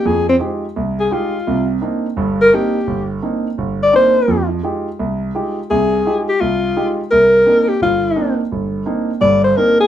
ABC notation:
X:1
M:4/4
L:1/8
Q:"Swing" 1/4=170
K:Cm
V:1 name="Alto saxophone"
A C z3 A F2- | F z4 B G2- | G z4 d c2- | c z6 z |
A3 G F3 z | B3 G F3 z | z4 d c B A |]
V:2 name="Grand piano"
[F,,F,]2 [A,EFG] z C,,2 [A,EFG] z | [C,,C,]2 [B,CDE] z [G,,,G,,]2 [B,CDE] z | G,,,2 [B,CDE] z G,,,2 [B,CDE] z | [F,,F,]2 [A,EFG] z C,,2 [A,EFG] z |
[C,,C,]2 [A,EFG] z C,,2 [A,EFG] z | C,,2 [B,CDE] z G,,,2 [B,CDE] z | G,,,2 [B,CDE] z [G,,,G,,]2 [B,CDE] z |]